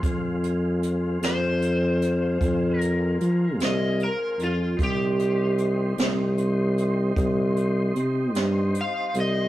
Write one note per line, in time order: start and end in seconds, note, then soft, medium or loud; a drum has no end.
0.00 1.18 F2 medium
0.00 4.73 G#3 medium
0.00 4.74 C4 medium
0.00 4.74 F4 medium
0.00 kick medium
0.00 closed hi-hat medium
0.44 closed hi-hat medium
0.83 closed hi-hat medium
1.22 2.37 F2 medium
1.22 2.80 C5 medium
1.22 snare loud
1.22 closed hi-hat medium
1.62 closed hi-hat medium
2.02 closed hi-hat medium
2.41 3.16 F2 medium
2.41 kick loud
2.41 closed hi-hat medium
2.80 3.57 A#4 medium
2.80 closed hi-hat medium
3.20 3.62 F3 medium
3.20 closed hi-hat medium
3.60 4.09 C2 medium
3.60 snare medium
3.60 closed hi-hat medium
3.65 4.01 D#5 medium
4.00 4.40 A#4 medium
4.00 closed hi-hat medium
4.39 4.75 F2 medium
4.39 closed hi-hat medium
4.43 4.80 F4 medium
4.77 5.94 C2 medium
4.77 9.48 G3 medium
4.77 9.48 C4 medium
4.77 9.48 D#4 medium
4.77 9.48 C5 medium
4.77 kick loud
4.77 closed hi-hat medium
4.83 6.35 G4 medium
5.19 closed hi-hat medium
5.58 closed hi-hat medium
5.97 7.12 C2 loud
5.97 snare loud
5.97 closed hi-hat medium
6.38 closed hi-hat medium
6.78 closed hi-hat medium
7.16 7.91 C2 loud
7.16 kick loud
7.16 closed hi-hat medium
7.56 closed hi-hat medium
7.96 8.36 C3 medium
7.96 closed hi-hat medium
8.34 8.83 G2 medium
8.34 snare medium
8.34 closed hi-hat medium
8.75 closed hi-hat medium
8.81 9.16 F5 medium
9.14 9.48 C2 medium
9.14 closed hi-hat medium
9.20 9.48 D#5 medium